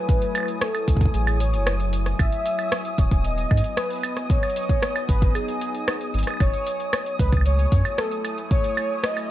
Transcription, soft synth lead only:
Already playing: B4
0.61 A4
1.14 G#4
1.40 C#5
2.19 E5
2.98 C#5
3.25 D#5
3.77 B4
4.30 C#5
5.09 B4
5.35 G#4
6.40 C#5
7.19 B4
7.46 C#5
7.98 A4
8.51 C#5
9.04 D#5

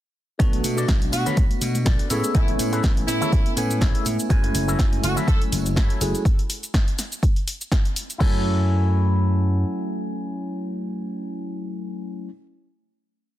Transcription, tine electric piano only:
0.39 A3 B3 D4 F#4
2.10 A3 B3 C#4 E4 G#4
2.34 A3 B3 C#4 E4 G#5
3.56 A3 B3 C#4 E4 G#5
4.30 F#3 A3 C#4 E4 G#5
6.01 F#3 A3 C#4 E4 G#4
8.20 F#3 A3 C#4 E4 G#5

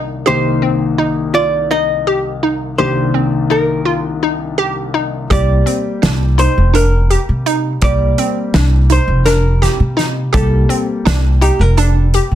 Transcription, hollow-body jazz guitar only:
0.27 C5
1.35 D5
1.71 D#5
2.78 C5
3.51 A#4
4.42 A4
5.32 D5
6.39 C5
6.75 A#4
7.84 D5
8.92 C5
9.26 A#4
10.34 A4
11.42 G4
11.61 A#4
11.77 A4

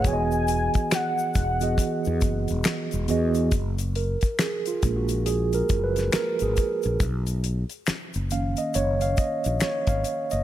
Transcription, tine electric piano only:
0.04 E3 B3 F#4 G#4 C#5
0.13 D#5
1.60 E3 B3 F#4 G#4 D#5
3.08 E3 B3 F#4 G#4 D#5
3.96 A#4
4.39 G#4
4.67 F4
4.83 F3 G#3 A#3
4.97 F#4
5.26 G#4
5.55 A#4
5.84 B4
6.13 A#4
6.43 G#4
8.31 D#3 A#3 C#4 F5
8.58 D#5
8.75 C#5
9.02 F5
9.18 D#5
9.62 C#5
9.88 F5
10.32 D#5

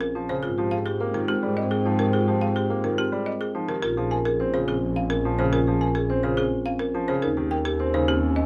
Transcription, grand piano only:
0.15 F3
0.30 C#3
0.58 F3
1.01 A#3
1.14 D#3
1.43 G3
1.86 F3
2.00 D#3
2.28 F3
2.70 A#3
2.84 D#3
3.12 G3
3.55 F3
3.68 D#3
3.97 F3
4.40 C4
4.54 C#3
5.25 F3
5.39 C#3
5.68 F3
6.10 C4
6.24 C#3
6.95 F3
7.09 C#3
7.37 D#3
7.80 C4
7.94 C#3

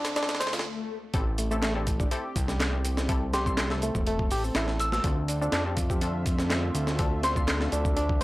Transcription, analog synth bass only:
1.14 A1
2.36 C2
3.95 E1
4.31 A1
4.55 A1
5.04 D2
5.53 F2
6.75 D2
7.72 D2

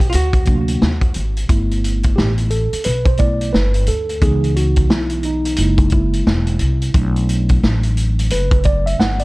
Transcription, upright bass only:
0.14 D2
0.82 D#2
1.16 G#1
1.50 G1
2.18 A1
2.73 muted upright bass stroke
2.86 B1
3.54 G1
3.88 D2
4.22 C#2
4.90 B1
5.58 F#1
6.27 E1
6.61 C2
6.94 B1
7.63 A1
8.32 F#1
8.99 G1

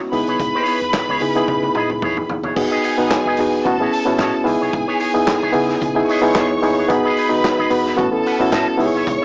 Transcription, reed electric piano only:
Already playing: B3 C#4 E4 F#4
0.12 B3 D#4 E4 G#4
1.20 B3 D#4 E4 G#4
1.35 B3 D#4 E4 G#4
2.56 B3 D#4 F#4 G#4
2.98 B3 D#4 F#4 B4
3.39 B3 D#4 F#4 G#4
3.65 B3 C#4 E4 F#4
3.79 B3 C#4 E4 G#4
4.05 B3 C#4 E4 F#4
4.44 B3 D#4 E4 G#4
5.14 B3 D#4 E4 G#4
5.52 B3 D#4 E4 G#4
5.95 B3 D#4 E4 G#4
6.22 B3 D#4 E4 G#4
6.62 B3 D#4 E4 G#4
6.89 B3 D#4 F#4 G#4
7.29 B3 D#4 F#4 B4
7.70 B3 D#4 F#4 B4
7.97 B3 C#4 E4 F#4
8.12 B3 C#4 E4 A4
8.40 B3 C#4 E4 F#4
8.78 B3 D#4 E4 G4
8.86 G#4

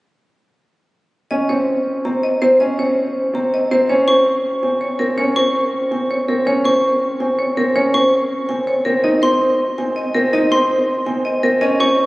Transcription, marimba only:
1.31 D#5
1.49 C#5
2.05 A#5
2.23 D#5
2.42 C5
2.60 D#5
2.79 C#5
3.35 A#5
3.54 D#5
3.71 C5
3.89 C#5
4.08 C5
4.63 G#5
4.81 C#5
4.99 A#4
5.18 C#5
5.36 C5
5.92 G#5
6.11 C#5
6.28 A#4
6.47 C#5
6.65 C5
7.20 G#5
7.39 C#5
7.57 A#4
7.76 C#5
7.94 C5
8.49 G#5
8.67 C#5
8.85 A#4
9.04 D#5
9.22 C5
9.78 G#5
9.96 D#5
10.14 A#4
10.33 D#5
10.52 C5
11.06 G#5
11.25 D#5
11.43 A#4
11.61 D#5
11.80 C#5

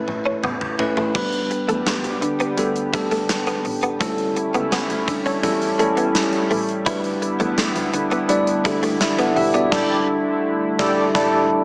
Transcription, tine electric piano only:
Already playing: A3 C#4 E4 B4
0.79 A3 C#4 E4 B4
1.15 G3 B3 D4 B4
2.57 G3 B3 D4 A4
2.93 G3 B3 D4 A4
4.00 G3 C#4 E4 A4
5.43 G3 C#4 E4 A4
5.79 G3 C#4 E4 A4
6.86 G3 D4 E4 B4
8.29 G3 D4 E4 D5
8.64 G3 D4 E4 A4
9.01 G4 E5
9.19 A4 F#5
9.36 G4 E5
9.54 F#4 D5
9.72 G3 D4 E4 A4
10.79 G3 D4 E4 A4
11.15 G3 D4 E4 A4

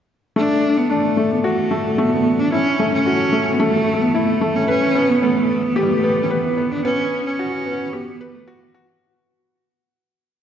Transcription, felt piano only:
0.36 A3
0.90 D4
1.17 A3
1.44 F#4
1.71 A3
1.98 A3
2.52 E4
2.80 A3
3.06 F#4
3.33 A3
3.60 A3
4.14 E4
4.41 A3
4.68 B4
4.95 B3
5.23 B3
5.76 G4
6.03 B3
6.30 B4
6.57 B3
6.85 B3
7.39 F#4
7.66 B3
7.93 G4
8.21 B4
8.47 F#4
8.74 F#4

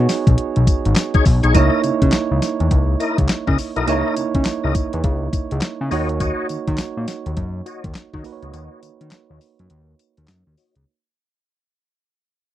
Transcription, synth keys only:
Already playing: B3 D#4 F#4 G#4 C#5
1.54 A#3 D#4 E4 C#5
3.87 A#3 D#4 E4 C#5
5.91 A#3 D#4 F#4 C#5
8.24 A#3 D#4 F#4 B4
8.32 C#5

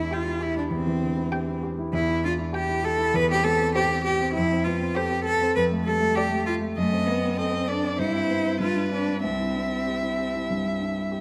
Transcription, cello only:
Already playing: E4
0.14 F4
0.43 E4
0.58 D4
0.72 C4
1.94 E4
2.25 F4
2.56 G4
2.85 A4
3.15 B4
3.31 G4
3.44 A4
3.75 G4
4.04 G4
4.34 E4
4.64 F4
4.95 G4
5.25 A4
5.56 B4
5.85 A4
6.16 G4
6.46 F4
6.77 A3
7.07 B3
7.37 C4
7.69 D4
7.99 E4
8.61 F4
8.92 D4
9.24 C4

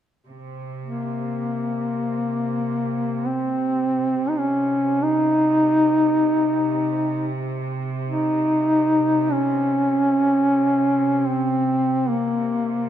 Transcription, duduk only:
0.83 A#3
3.27 C4
4.29 D#4
4.38 C#4
5.03 D#4
8.07 D#4
9.32 C#4
11.28 C4
12.09 A#3

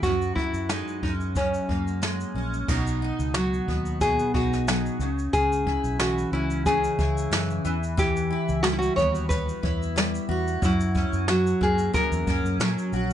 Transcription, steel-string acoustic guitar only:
Already playing: E3 G3 B3 E4
0.04 F#2 F#4
0.70 G#3
1.03 C#4
1.36 F#2
1.69 A#3
2.02 G#3
2.35 C#4
2.68 B2
3.02 D#4
3.35 F#3
3.68 B3
4.01 B2
4.35 D#4
4.68 F#3
5.01 C#3
5.33 C#3
5.67 E4
6.00 E3
6.33 C#4
6.67 C#3
6.99 E4
7.31 E3
7.65 E3
7.97 E3
8.30 E4
8.64 G3
8.97 B3
9.63 E4
9.96 G3
10.29 F#4
10.62 F#2
10.95 C#4
11.28 F#3
11.61 A#3
11.93 F#2
12.27 C#4
12.60 F#3
12.93 F#4

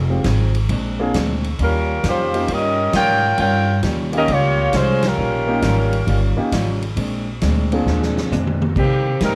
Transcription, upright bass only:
Already playing: F1
0.24 G#1
0.69 A#1
1.14 D2
1.59 D#2
2.03 F2
2.48 G2
2.93 G#2
3.38 G2
3.83 D#2
4.28 C#2
4.73 C2
5.18 A#1
5.62 G#1
6.07 G1
6.38 muted upright bass stroke
6.52 G#1
6.97 A#1
7.42 D2
7.86 D#2
8.31 F2
8.76 C3
9.21 G#2

